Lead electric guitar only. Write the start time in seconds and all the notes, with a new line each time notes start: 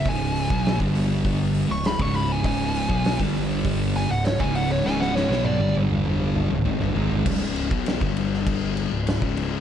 0.09 G#5
1.71 C#6
1.87 B5
2.01 C#6
2.16 B5
2.32 G#5
2.46 G#5
3.96 G#5
4.11 F#5
4.25 C#5
4.40 G#5
4.56 F#5
4.71 C#5
4.86 G#5
5.01 F#5
5.15 C#5
5.45 D5